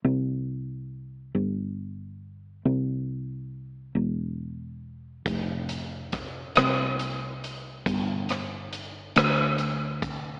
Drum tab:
HH |------|------|xxxxxx|xxxxxx|
SD |------|------|--rr--|-r-r--|
BD |------|------|o-o---|o----o|